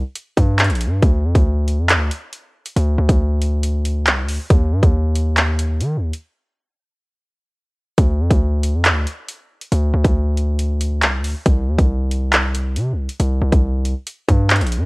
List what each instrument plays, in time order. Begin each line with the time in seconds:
0.15 closed hi-hat
0.37 808-style bass G2, kick, closed hi-hat
0.59 clap, closed hi-hat
0.64 closed hi-hat
0.70 808-style bass A#1, closed hi-hat
0.75 closed hi-hat
0.81 closed hi-hat
0.86 808-style bass G2
1.02 808-style bass D2, kick, closed hi-hat
1.24 808-style bass F2
1.35 808-style bass D2, kick, closed hi-hat
1.68 closed hi-hat
1.79 808-style bass F2
1.89 clap, closed hi-hat
1.95 808-style bass D2
2.11 closed hi-hat
2.33 closed hi-hat
2.66 closed hi-hat
2.76 808-style bass D2, closed hi-hat
2.98 808-style bass D2
3.09 808-style bass D2, kick, closed hi-hat
3.42 closed hi-hat
3.63 closed hi-hat
3.85 closed hi-hat
4.07 808-style bass C2, clap, closed hi-hat
4.23 808-style bass D2
4.29 open hi-hat
4.50 808-style bass D#2, kick, closed hi-hat
4.72 808-style bass G2
4.83 808-style bass D#2, kick, closed hi-hat
5.15 closed hi-hat
5.37 clap, closed hi-hat
5.59 closed hi-hat
5.81 808-style bass D#3, closed hi-hat
5.97 808-style bass D#2
6.13 closed hi-hat
7.98 808-style bass D2, kick, closed hi-hat
8.20 808-style bass F2
8.31 808-style bass D2, kick, closed hi-hat
8.63 closed hi-hat
8.74 808-style bass F2
8.85 clap, closed hi-hat
8.90 808-style bass D2
9.07 closed hi-hat
9.29 closed hi-hat
9.61 closed hi-hat
9.72 808-style bass D2, closed hi-hat
9.94 808-style bass D2
10.05 808-style bass D2, kick, closed hi-hat
10.37 closed hi-hat
10.59 closed hi-hat
10.81 closed hi-hat
11.02 808-style bass C2, clap, closed hi-hat
11.19 808-style bass D2
11.24 open hi-hat
11.46 808-style bass C2, kick, closed hi-hat
11.68 808-style bass D#2
11.78 808-style bass C2, kick, closed hi-hat
12.11 closed hi-hat
12.33 clap, closed hi-hat
12.55 closed hi-hat
12.76 808-style bass C3, closed hi-hat
12.93 808-style bass C2
13.09 closed hi-hat
13.20 808-style bass C2, closed hi-hat
13.42 808-style bass C2
13.52 808-style bass C2, kick, closed hi-hat
13.85 closed hi-hat
14.07 closed hi-hat
14.28 808-style bass G2, kick, closed hi-hat
14.50 clap, closed hi-hat
14.56 closed hi-hat
14.61 808-style bass A#1, closed hi-hat
14.67 closed hi-hat
14.72 closed hi-hat
14.77 808-style bass G2